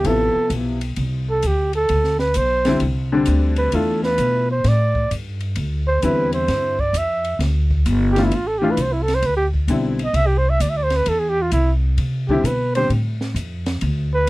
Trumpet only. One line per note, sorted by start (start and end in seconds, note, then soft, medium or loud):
0.07 0.52 A4 loud
1.30 1.48 A4 medium
1.47 1.75 G4 medium
1.76 2.18 A4 medium
2.20 2.38 B4 medium
2.37 2.82 C5 loud
3.58 3.77 B4 medium
3.75 4.04 A4 medium
4.04 4.47 B4 medium
4.51 4.70 C5 medium
4.68 5.13 D5 loud
5.87 6.04 C5 loud
6.03 6.33 B4 medium
6.35 6.82 C5 medium
6.80 6.99 D5 medium
6.98 7.42 E5 medium
8.12 8.25 G4 medium
8.24 8.37 E4 medium
8.35 8.49 F4 medium
8.47 8.60 A4 medium
8.58 8.72 G4 medium
8.71 8.83 B4 medium
8.81 8.94 C5 medium
8.93 9.04 E4 medium
9.03 9.16 A4 medium
9.15 9.28 C5 medium
9.26 9.36 B4 medium
9.37 9.47 G4 medium
10.04 10.17 D#5 loud
10.16 10.28 E5 loud
10.27 10.40 G4 medium
10.38 10.51 C5 loud
10.50 10.63 E5 medium
10.62 10.71 D5 medium
10.70 10.79 E5 medium
10.77 10.85 D5 medium
10.83 10.98 C5 loud
10.96 11.10 B4 medium
11.09 11.21 A4 medium
11.19 11.31 G#4 medium
11.29 11.43 G4 loud
11.42 11.51 F4 medium
11.53 11.71 E4 medium
12.29 12.47 G4 medium
12.45 12.75 B4 medium
12.75 12.90 C5 loud
14.14 14.29 B4 medium